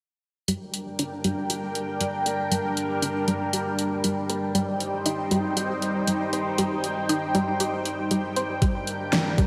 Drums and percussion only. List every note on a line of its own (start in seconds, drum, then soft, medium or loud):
0.48 closed hi-hat medium
0.74 closed hi-hat medium
0.99 closed hi-hat medium
1.24 closed hi-hat medium
1.50 closed hi-hat medium
1.75 closed hi-hat medium
2.01 closed hi-hat medium
2.26 closed hi-hat medium
2.52 closed hi-hat medium
2.77 closed hi-hat medium
3.02 closed hi-hat medium
3.28 closed hi-hat medium
3.53 closed hi-hat medium
3.79 closed hi-hat medium
4.04 closed hi-hat medium
4.30 closed hi-hat medium
4.55 closed hi-hat medium
4.80 closed hi-hat medium
5.06 closed hi-hat medium
5.31 closed hi-hat medium
5.57 closed hi-hat medium
5.82 closed hi-hat medium
6.07 closed hi-hat medium
6.33 closed hi-hat medium
6.58 closed hi-hat medium
6.84 closed hi-hat medium
7.09 closed hi-hat medium
7.35 closed hi-hat medium
7.60 closed hi-hat medium
7.85 closed hi-hat medium
8.11 closed hi-hat medium
8.36 closed hi-hat medium
8.62 kick loud
8.62 closed hi-hat medium
8.87 closed hi-hat medium
9.13 snare loud
9.13 closed hi-hat medium
9.38 kick loud
9.38 closed hi-hat medium